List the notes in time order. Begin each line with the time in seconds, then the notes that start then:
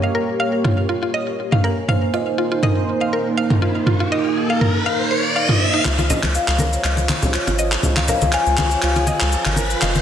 Already playing: A#3 G4 C#5
0.03 F5
0.15 A#4
0.40 F5
0.64 F4, mid tom
0.89 F4
1.03 F4
1.14 D#5
1.52 F5, mid tom
1.64 A#4
1.88 A#3 D#4 C5 F5, mid tom, riser
2.14 F4 D#5
2.38 F4
2.52 F4
2.63 A#4 D#5, mid tom
3.01 F5
3.13 A#4
3.37 F5
3.50 mid tom
3.62 F4
3.87 F4 A#4, mid tom
4.00 F4
4.12 D#5
4.50 F5
4.61 A#4, mid tom
4.86 F5
5.11 C5
5.36 F5
5.49 F4, mid tom
5.60 C5
5.74 D#4
5.85 C#2 F4 C5 C#5, clap, riser, muted conga, cabasa
5.98 F4, high conga, cabasa
6.10 D#5, low conga, cabasa
6.23 C#2, clap, muted conga, high conga, cabasa
6.35 F5, cabasa
6.48 C#2 F5, clap, cabasa
6.58 A#4, muted conga, high conga, cabasa
6.73 cabasa
6.84 C#2 D#5 F5, clap, cabasa
6.97 muted conga, cabasa
7.09 F4, clap, high conga, cabasa
7.22 C#2, low conga, cabasa
7.34 F4, clap, cabasa
7.47 G#1 F4, muted conga, high conga, cabasa
7.59 C#5 D#5, cabasa
7.72 clap, cabasa
7.83 C#2 D#5, muted conga, low conga, cabasa
7.96 F5, clap, high conga, cabasa
8.08 A#4 F5, low conga, cabasa
8.21 C#2, muted conga, high conga, cabasa
8.32 F5 G#5, clap, cabasa
8.46 C#2, cabasa
8.57 F4, clap, muted conga, high conga, cabasa
8.71 cabasa
8.82 C#2 F4 F5, clap, cabasa
8.96 F4, muted conga, cabasa
9.07 D#5, high conga, cabasa
9.20 C#2, clap, cabasa
9.32 cabasa
9.45 G#1 F5, clap, muted conga, cabasa
9.56 A#4 C5, high conga, cabasa
9.70 cabasa
9.82 F1 G#3 D#5 F5, clap, muted conga, cabasa
9.95 high conga, cabasa